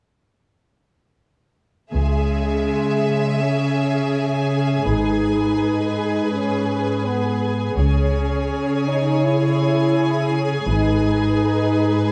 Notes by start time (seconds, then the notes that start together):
1.92 C#2 C#3 G#3 G#4 E5 G#5
3.41 C#4
4.86 G#1 G#2 D#4 B4
6.31 C#4
7.05 B3
7.77 C#2 C#3 C#4 G#4 C#5 G#5
8.87 D#4
9.24 E4
10.67 G#1 G#2 D#4 B4